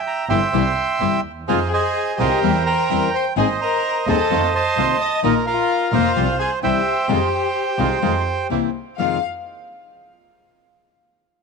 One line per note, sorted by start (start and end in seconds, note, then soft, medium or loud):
0.00 0.25 E5 medium
0.00 0.25 G5 medium
0.07 0.28 A#5 medium
0.28 0.49 G1 loud
0.28 0.38 C3 medium
0.28 0.38 E3 medium
0.28 0.39 G3 medium
0.28 0.48 C4 medium
0.28 0.39 C4 medium
0.28 0.49 E4 medium
0.28 0.39 E4 medium
0.28 0.49 G4 medium
0.28 1.20 E5 medium
0.28 1.20 G5 medium
0.28 1.21 C6 loud
0.52 0.73 C2 loud
0.52 0.62 C3 medium
0.52 0.62 E3 medium
0.52 0.62 G3 medium
0.52 0.72 C4 medium
0.52 0.63 C4 medium
0.52 0.72 E4 medium
0.52 0.63 E4 medium
0.52 0.72 G4 loud
0.99 1.20 G1 medium
0.99 1.18 C3 medium
0.99 1.18 E3 medium
0.99 1.18 G3 medium
0.99 1.20 C4 medium
0.99 1.18 C4 medium
0.99 1.20 E4 soft
0.99 1.18 E4 medium
0.99 1.20 G4 medium
1.24 1.47 D#2 medium
1.48 1.68 F2 loud
1.48 1.57 C3 medium
1.48 1.58 D#3 medium
1.48 1.58 G#3 medium
1.48 1.58 C4 loud
1.48 1.68 D#4 medium
1.48 1.68 F4 medium
1.48 1.60 F4 medium
1.48 1.58 F4 loud
1.48 1.68 G#4 medium
1.48 2.39 G#4 medium
1.48 1.72 C5 medium
1.48 1.59 F5 medium
1.72 2.16 G#4 medium
1.72 2.19 C5 medium
1.72 2.40 D#5 medium
1.72 2.17 G#5 medium
2.18 2.39 C2 loud
2.18 2.28 C3 medium
2.18 2.29 D#3 medium
2.18 2.29 G#3 medium
2.18 2.29 C4 medium
2.18 2.39 D#4 medium
2.18 2.39 F4 medium
2.18 2.29 F4 medium
2.18 2.63 G4 medium
2.18 2.39 G#4 loud
2.18 3.10 A#4 medium
2.18 3.10 C5 medium
2.18 2.64 G5 medium
2.42 2.63 E2 loud
2.42 2.52 E3 medium
2.42 2.52 G3 loud
2.42 2.63 C4 medium
2.42 2.52 C4 loud
2.42 2.63 E4 medium
2.42 2.52 E4 loud
2.42 2.63 A#4 loud
2.66 3.10 A#4 medium
2.66 3.33 G5 medium
2.66 3.15 A#5 loud
2.89 3.10 E2 medium
2.89 3.07 E3 medium
2.89 3.07 G3 medium
2.89 3.10 C4 medium
2.89 3.07 C4 medium
2.89 3.10 E4 soft
2.89 3.08 E4 medium
2.89 3.10 A#4 medium
3.14 3.25 C5 medium
3.14 3.25 C6 loud
3.36 3.57 G#1 loud
3.36 3.46 D#3 loud
3.36 3.46 G#3 loud
3.36 3.46 C4 loud
3.36 3.57 C4 medium
3.36 3.57 D#4 medium
3.36 3.46 D#4 loud
3.36 3.48 G#4 medium
3.36 3.57 G#4 medium
3.36 3.47 G#4 loud
3.36 4.08 C5 medium
3.36 3.60 D#5 medium
3.36 3.49 G#5 medium
3.61 4.04 A#4 medium
3.61 4.08 D#5 medium
3.61 4.04 A#5 loud
4.07 4.27 D#2 loud
4.07 4.16 D#3 loud
4.07 4.16 G#3 medium
4.07 4.27 C4 medium
4.07 4.17 C4 medium
4.07 4.27 D#4 medium
4.07 4.17 D#4 medium
4.07 4.27 G#4 loud
4.07 4.17 G#4 loud
4.07 4.51 A4 medium
4.07 4.97 C5 medium
4.07 4.54 D#5 medium
4.07 4.54 A5 loud
4.30 4.50 F2 loud
4.30 4.39 C3 medium
4.30 4.40 D#3 medium
4.30 4.50 A3 medium
4.30 4.40 A3 medium
4.30 4.40 C4 loud
4.30 4.50 D#4 medium
4.30 4.50 F4 loud
4.30 4.40 F4 loud
4.53 4.96 C5 medium
4.53 5.20 D#5 medium
4.53 5.20 A5 medium
4.53 5.02 C6 loud
4.77 4.96 C2 medium
4.77 4.94 C3 medium
4.77 4.94 D#3 medium
4.77 4.96 A3 medium
4.77 4.94 A3 medium
4.77 4.94 C4 medium
4.77 4.96 D#4 medium
4.77 4.97 F4 medium
4.77 4.94 F4 medium
5.00 5.21 D#5 medium
5.00 5.22 D#6 loud
5.23 5.43 A#1 loud
5.23 5.32 D#3 medium
5.23 5.43 A#3 medium
5.23 5.32 A#3 loud
5.23 5.43 D#4 medium
5.23 5.34 D#4 medium
5.23 5.32 D#4 loud
5.23 5.43 F4 loud
5.23 5.33 F4 loud
5.23 5.33 A#4 loud
5.23 5.46 A#4 medium
5.23 5.35 D#5 loud
5.47 5.90 F4 medium
5.47 6.12 A#4 medium
5.47 5.92 F5 loud
5.92 6.12 F1 loud
5.92 6.02 D#3 medium
5.92 6.12 A#3 medium
5.92 6.02 A#3 medium
5.92 6.12 D#4 medium
5.92 6.02 D#4 loud
5.92 6.12 F4 loud
5.92 6.36 F4 medium
5.92 6.02 F4 loud
5.92 6.02 A#4 loud
5.92 6.59 C5 medium
5.92 6.37 F5 loud
6.15 6.36 C2 loud
6.15 6.25 C3 medium
6.15 6.25 F3 medium
6.15 6.35 G3 medium
6.15 6.25 G3 loud
6.15 6.35 C4 medium
6.15 6.25 C4 loud
6.15 6.36 F4 loud
6.15 6.26 F4 loud
6.39 6.49 G#4 medium
6.39 6.51 G#5 loud
6.62 6.82 C2 medium
6.62 6.79 C3 medium
6.62 6.79 E3 medium
6.62 6.82 G3 medium
6.62 6.80 G3 medium
6.62 6.82 C4 medium
6.62 6.80 C4 medium
6.62 6.82 E4 medium
6.62 6.80 E4 medium
6.62 8.46 G4 medium
6.62 8.47 C5 medium
6.62 7.07 E5 medium
6.62 8.47 G5 loud
7.08 7.28 F2 loud
7.08 7.18 C3 medium
7.08 7.18 D#3 loud
7.08 7.28 G#3 medium
7.08 7.18 G#3 loud
7.08 7.18 C4 loud
7.08 7.28 D#4 medium
7.08 7.29 F4 loud
7.08 7.19 F4 loud
7.78 7.99 C2 loud
7.78 7.88 C3 medium
7.78 7.88 D#3 medium
7.78 7.88 G#3 medium
7.78 7.99 G#3 medium
7.78 7.88 C4 medium
7.78 7.99 D#4 medium
7.78 7.99 F4 loud
7.78 7.88 F4 loud
8.02 8.23 F2 loud
8.02 8.11 C3 medium
8.02 8.12 D#3 medium
8.02 8.22 G#3 medium
8.02 8.12 G#3 loud
8.02 8.12 C4 loud
8.02 8.22 D#4 medium
8.02 8.23 F4 loud
8.02 8.12 F4 medium
8.50 8.71 C2 medium
8.50 8.68 C3 medium
8.50 8.68 E3 medium
8.50 8.71 A#3 medium
8.50 8.68 A#3 medium
8.50 8.71 C4 soft
8.50 8.68 C4 medium
8.50 8.71 E4 medium
8.50 8.69 E4 medium
8.98 9.17 F2 medium
8.98 9.18 F2 medium
8.98 9.18 C3 medium
8.98 9.18 D#3 loud
8.98 9.18 G#3 medium
8.98 9.18 C4 medium
8.98 9.18 D#4 medium
8.98 9.18 F4 medium
8.98 9.18 F4 loud
8.98 9.20 F5 medium
8.98 9.21 F5 medium